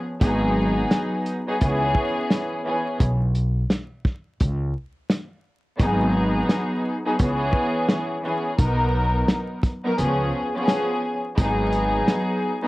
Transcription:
0.21 upright bass G#1, string section F#3 B3 D#4 G#4, kick, closed hi-hat
0.91 snare, closed hi-hat
1.26 closed hi-hat
1.46 string section F#3 B3 D#4 G#4
1.61 upright bass C#2, string section E3 B3 C#4 G#4, kick, closed hi-hat
1.95 kick
2.30 snare, closed hi-hat
2.65 string section E3 B3 C#4 G#4
3.00 upright bass B1, kick, closed hi-hat
3.35 closed hi-hat
3.70 snare, closed hi-hat
4.05 kick, snare
4.40 upright bass C#2, kick, closed hi-hat
5.10 snare, closed hi-hat
5.79 upright bass G#1, string section F#3 B3 D#4 G#4, kick, closed hi-hat
6.49 snare, closed hi-hat
7.05 string section F#3 B3 D#4 G#4
7.19 upright bass C#2, string section E3 B3 C#4 G#4, kick, closed hi-hat
7.53 kick
7.89 snare, closed hi-hat
8.23 string section E3 B3 C#4 G#4
8.58 upright bass B1, string section F#3 B3 D#4 A#4, kick, closed hi-hat
9.28 snare, closed hi-hat
9.63 kick, snare, closed hi-hat
9.84 string section F#3 B3 D#4 A#4
9.97 upright bass C#2, string section F3 B3 C#4 G#4, closed hi-hat
10.54 string section F3 B3 C#4 G#4
10.68 snare, closed hi-hat
11.38 upright bass G#1, string section F#3 B3 D#4 G#4, kick, closed hi-hat
11.72 closed hi-hat
12.07 snare, closed hi-hat
12.63 string section F#3 B3 D#4 G#4

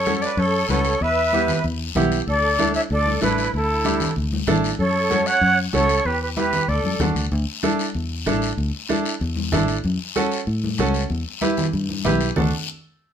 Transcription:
Already playing: fingered electric bass F#2, accordion A4, flute C#5
0.06 upright piano C#4 F#4 A4, high conga, short guiro
0.22 accordion B4, flute D5, short guiro
0.37 fingered electric bass F#2, accordion A4, flute C#5, long guiro
0.69 fingered electric bass C#2, upright piano C#4 F#4 B4, accordion A4, flute C#5, high conga, short guiro
0.85 short guiro
1.00 fingered electric bass E2, accordion B4, flute E5, long guiro
1.32 upright piano B3 E4 G4, high conga, short guiro
1.48 low conga, short guiro
1.64 fingered electric bass E2, long guiro
1.95 fingered electric bass B1, upright piano B3 E4 G4, high conga, low conga, short guiro
2.12 short guiro
2.27 fingered electric bass D2, accordion A4, flute D5, long guiro
2.59 upright piano D4 E4 A4, high conga, short guiro
2.74 accordion C#5, flute E5, short guiro
2.90 fingered electric bass D2, accordion A4, flute D5, long guiro
3.06 high conga
3.21 fingered electric bass A1, upright piano D4 E4 A4, accordion E4, flute B4, high conga, short guiro
3.38 short guiro
3.53 fingered electric bass D2, accordion E4, flute A4, long guiro
3.84 upright piano D4 E4 G4, high conga, short guiro
4.00 low conga, short guiro
4.16 fingered electric bass D2, long guiro
4.33 high conga
4.47 fingered electric bass A1, upright piano D4 E4 A4, high conga, low conga, short guiro
4.64 short guiro
4.79 fingered electric bass F#2, accordion A4, flute C#5, long guiro
5.10 upright piano C#4 F#4 A4, high conga, short guiro
5.26 accordion C#5, flute F#5, short guiro
5.41 fingered electric bass F#2, long guiro
5.73 fingered electric bass C#2, upright piano C#4 F#4 A4, accordion A4, flute C#5, high conga, short guiro
5.89 short guiro
6.05 fingered electric bass E2, accordion G4, flute B4, long guiro
6.22 accordion G4, flute B4
6.36 upright piano E4 G4 B4, accordion G4, flute B4, high conga, short guiro
6.53 low conga, short guiro
6.68 fingered electric bass D2, accordion A4, flute D5, long guiro
6.84 fingered electric bass F#2, high conga
7.00 fingered electric bass E2, upright piano D4 F#4 A4, high conga, low conga, short guiro
7.15 fingered electric bass D2, short guiro
7.32 fingered electric bass D2, long guiro
7.63 upright piano D4 E4 A4, high conga, short guiro
7.79 short guiro
7.95 fingered electric bass E2, long guiro
8.26 fingered electric bass A1, upright piano D4 E4 A4, high conga, short guiro
8.42 short guiro
8.57 fingered electric bass D2, long guiro
8.89 upright piano D4 E4 A4, high conga, short guiro
9.05 short guiro
9.21 fingered electric bass E2, long guiro
9.36 high conga
9.52 fingered electric bass A1, upright piano D4 E4 A4, high conga, low conga, short guiro
9.68 short guiro
9.84 fingered electric bass F#2, long guiro
10.16 upright piano C#4 F#4 A4, high conga, short guiro
10.32 short guiro
10.47 fingered electric bass A2, long guiro
10.64 high conga
10.78 fingered electric bass C#2, upright piano C#4 F#4 A4, high conga, short guiro
10.94 short guiro
11.10 fingered electric bass E2, long guiro
11.41 upright piano E4 G4 B4, high conga, short guiro
11.57 low conga, short guiro
11.73 fingered electric bass G2, long guiro
11.89 high conga
12.05 fingered electric bass B1, upright piano E4 G4 B4, high conga, low conga, short guiro
12.21 short guiro
12.36 fingered electric bass D2, upright piano D4 F#4 A4, low conga, long guiro

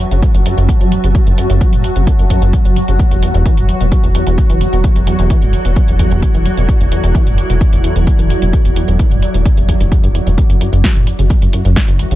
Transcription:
Already playing: synth drone F#3 F#4, ambient pad F#4 B4 E5 A5
0.11 sub bass F#1, acid bass C#3, closed hi-hat
0.23 acid bass F#2, kick, closed hi-hat
0.34 sub bass F#1, acid bass F#2, closed hi-hat
0.46 acid bass F#2, open hi-hat
0.57 sub bass F#1, acid bass F#2, closed hi-hat
0.69 acid bass C#3, kick, closed hi-hat
0.81 sub bass F#1, acid bass F#3, closed hi-hat
0.92 acid bass E2, open hi-hat
1.04 sub bass F#1, acid bass C#3, closed hi-hat
1.15 acid bass F#2, kick, closed hi-hat
1.27 sub bass F#1, acid bass F#2, closed hi-hat
1.38 acid bass F#2, open hi-hat
1.50 sub bass F#1, acid bass F#2, closed hi-hat
1.61 acid bass F#3, kick, closed hi-hat
1.73 sub bass F#1, acid bass A2, closed hi-hat
1.84 acid bass E2, open hi-hat
1.96 sub bass F#1, acid bass C#3, closed hi-hat
2.07 acid bass F#2, kick, closed hi-hat
2.19 sub bass F#1, acid bass F#2, closed hi-hat
2.30 acid bass F#2, kick, open hi-hat
2.42 sub bass F#1, acid bass F#2, closed hi-hat
2.53 acid bass C#3, kick, closed hi-hat
2.65 sub bass F#1, acid bass F#3, closed hi-hat
2.76 acid bass E2, open hi-hat
2.88 sub bass F#1, acid bass C#3, closed hi-hat
2.99 acid bass E2, ambient pad E4, kick, closed hi-hat
3.11 sub bass E1, acid bass E2, closed hi-hat
3.23 acid bass E2, ambient pad D5, open hi-hat
3.34 sub bass E1, acid bass E2, closed hi-hat
3.46 acid bass E3, kick, closed hi-hat
3.51 ambient pad A4
3.57 sub bass E1, acid bass G2, closed hi-hat
3.69 acid bass D2, open hi-hat
3.81 sub bass E1, acid bass B2, closed hi-hat
3.92 acid bass E2, kick, closed hi-hat
4.04 sub bass E1, acid bass E2, closed hi-hat
4.15 acid bass E2, open hi-hat
4.27 sub bass E1, acid bass E2, closed hi-hat
4.38 acid bass B2, kick, closed hi-hat
4.50 sub bass E1, acid bass E3, closed hi-hat
4.61 acid bass D2, open hi-hat
4.73 sub bass E1, acid bass B2, closed hi-hat
4.84 acid bass E2, kick, closed hi-hat
4.96 sub bass E1, acid bass E2, closed hi-hat
5.07 acid bass E2, open hi-hat
5.19 sub bass E1, acid bass E2, closed hi-hat
5.30 acid bass E3, kick, closed hi-hat
5.42 sub bass E1, acid bass G2, closed hi-hat
5.53 acid bass D2, open hi-hat
5.65 sub bass E1, acid bass B2, closed hi-hat
5.76 acid bass E2, kick, closed hi-hat
5.88 sub bass E1, acid bass E2, closed hi-hat
5.99 acid bass E2, kick, open hi-hat
6.11 sub bass E1, acid bass E2, closed hi-hat
6.22 acid bass B2, kick, closed hi-hat
6.34 sub bass E1, acid bass E3, closed hi-hat
6.46 acid bass D2, open hi-hat
6.57 sub bass E1, acid bass B2, closed hi-hat
6.69 acid bass E2, kick, closed hi-hat
6.80 sub bass E1, acid bass E2, closed hi-hat
6.92 acid bass E2, open hi-hat
7.03 sub bass E1, acid bass E2, closed hi-hat
7.15 acid bass E3, kick, closed hi-hat
7.27 sub bass E1, acid bass G2, closed hi-hat
7.38 acid bass D2, open hi-hat
7.50 sub bass E1, acid bass B2, closed hi-hat
7.61 acid bass E2, kick, closed hi-hat
7.73 sub bass E1, acid bass E2, closed hi-hat
7.84 acid bass E2, open hi-hat
7.96 sub bass E1, acid bass E2, closed hi-hat
8.07 acid bass B2, kick, closed hi-hat
8.19 sub bass E1, acid bass E3, closed hi-hat
8.30 acid bass D2, open hi-hat
8.42 sub bass E1, acid bass B2, closed hi-hat
8.53 acid bass E2, kick, closed hi-hat
8.65 sub bass E1, acid bass E2, closed hi-hat
8.76 acid bass E2, open hi-hat
8.88 sub bass E1, acid bass E2, closed hi-hat
8.99 acid bass E3, kick, closed hi-hat
9.11 sub bass E1, acid bass G2, closed hi-hat
9.22 acid bass D2, open hi-hat
9.34 sub bass E1, acid bass B2, closed hi-hat
9.46 acid bass E2, kick, closed hi-hat
9.57 sub bass E1, acid bass E2, closed hi-hat
9.69 acid bass E2, kick, open hi-hat
9.80 sub bass E1, acid bass G2, closed hi-hat
9.92 acid bass E2, kick, closed hi-hat
10.03 sub bass E1, acid bass G2, closed hi-hat
10.15 acid bass E2, open hi-hat
10.27 sub bass E1, acid bass E2, closed hi-hat
10.38 acid bass F#2, synth drone F#3 F#4, ambient pad F#4, kick, closed hi-hat
10.50 sub bass F#1, acid bass F#2, closed hi-hat
10.61 acid bass F#2, open hi-hat
10.73 sub bass F#1, acid bass F#2, ambient pad E5, closed hi-hat
10.84 acid bass F#3, kick, snare, closed hi-hat
10.91 ambient pad B4
10.96 sub bass F#1, acid bass A2, closed hi-hat
11.00 ambient pad A5
11.07 acid bass E2, open hi-hat
11.19 sub bass F#1, acid bass C#3, closed hi-hat
11.30 acid bass F#2, kick, closed hi-hat
11.42 sub bass F#1, acid bass F#2, closed hi-hat
11.53 acid bass F#2, open hi-hat
11.65 sub bass F#1, acid bass F#2, closed hi-hat
11.76 acid bass C#3, kick, snare, closed hi-hat
11.88 sub bass F#1, acid bass F#1, closed hi-hat
11.99 acid bass E2, open hi-hat
12.11 sub bass F#1, acid bass C#3, closed hi-hat

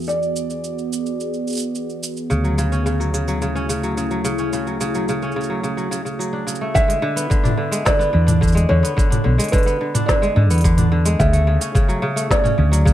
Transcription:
Already playing: fingered electric bass E2, ambient pad E3 B3 F#4 G#4
0.01 cabasa
0.04 cabasa
0.07 felt piano D5, cabasa
0.09 cabasa
0.23 cabasa
0.36 cabasa
0.50 cabasa
0.64 cabasa
0.79 cabasa
0.93 cabasa
1.06 cabasa
1.20 cabasa
1.34 cabasa
1.47 cabasa
1.50 cabasa
1.52 cabasa
1.55 cabasa
1.57 cabasa
1.59 cabasa
1.62 cabasa
1.75 cabasa
1.90 cabasa
2.03 cabasa
2.17 cabasa
2.30 fingered electric bass D2, kora C#3, cabasa
2.44 kora F#3, cabasa
2.49 ambient pad A3
2.58 kora C#3, cabasa
2.72 kora C#4, cabasa
2.86 kora C#3, cabasa
3.00 kora F#3, cabasa
3.08 ambient pad E4
3.14 kora C#3, cabasa
3.28 kora F#3, cabasa
3.42 kora C#3, cabasa
3.55 kora C#4, cabasa
3.69 kora C#3, cabasa
3.83 kora F#3, cabasa
3.97 kora C#3, cabasa
4.11 kora F#3, cabasa
4.25 kora C#3, cabasa
4.38 kora C#4, cabasa
4.53 kora C#3, cabasa
4.67 kora F#3, cabasa
4.81 kora C#3, cabasa
4.95 kora F#3, cabasa
5.08 kora C#3, cabasa
5.22 kora C#4, cabasa
5.32 cabasa
5.36 kora C#3
5.41 cabasa
5.43 cabasa
5.50 kora F#3
5.63 kora C#3, cabasa
5.77 kora F#3, cabasa
5.91 kora C#3, cabasa
6.05 kora C#3, cabasa
6.19 kora F#3, cabasa
6.33 kora D4
6.47 kora C#3, cabasa
6.55 cabasa
6.61 kora A3
6.74 kora D3, felt piano E5, kick, cabasa
6.88 kora G#3, open hi-hat, cabasa
7.02 kora D3
7.16 kora B3, open hi-hat, cabasa
7.30 kora D3, kick, cabasa
7.44 kora D4, mid tom, cabasa
7.57 kora D3
7.71 kora G#3, open hi-hat, cabasa
7.85 kora D3, felt piano D5, kick, snare, cabasa
7.99 kora B3, cabasa
8.13 fingered electric bass E2, kora D3
8.27 kora D4, mid tom, open hi-hat, cabasa
8.41 kora D3, kick, cabasa
8.48 cabasa
8.52 kora G#3, cabasa
8.57 open hi-hat, cabasa
8.69 fingered electric bass E2, kora D3, felt piano C#5
8.83 kora B3, open hi-hat, cabasa
8.97 kora D3, kick, cabasa
9.10 kora D4, mid tom, open hi-hat, cabasa
9.24 fingered electric bass B1, kora D3
9.38 kora G#3, open hi-hat, cabasa
9.44 open hi-hat
9.48 kora D3, felt piano B4, open hi-hat
9.53 kick, open hi-hat, cabasa
9.58 open hi-hat
9.63 kora B3, open hi-hat
9.67 cabasa
9.81 kora D3
9.94 kora D4, mid tom, open hi-hat, cabasa
10.06 kora D3, felt piano D5, kick, snare, cabasa
10.22 kora G#3, cabasa
10.36 fingered electric bass G#2, kora D3
10.50 fingered electric bass E2, kora B3, open hi-hat, cabasa
10.54 open hi-hat
10.58 open hi-hat
10.61 kora D3, kick, open hi-hat, cabasa
10.78 kora D4, mid tom, open hi-hat, cabasa
10.92 kora D3
11.05 kora G#3, open hi-hat, cabasa
11.19 fingered electric bass D2, kora C#3, felt piano E5, kick, cabasa
11.33 kora A3, open hi-hat, cabasa
11.47 kora C#3
11.61 kora C#4, open hi-hat, cabasa
11.75 kora C#3, kick, cabasa
11.88 kora F#3, cabasa
12.02 kora C#3
12.16 kora A3, open hi-hat, cabasa
12.31 kora C#3, felt piano D5, kick, snare, cabasa
12.44 kora C#4, mid tom, cabasa
12.58 fingered electric bass D2, kora C#3
12.72 kora F#3, open hi-hat, cabasa
12.85 kora C#3, kick, cabasa

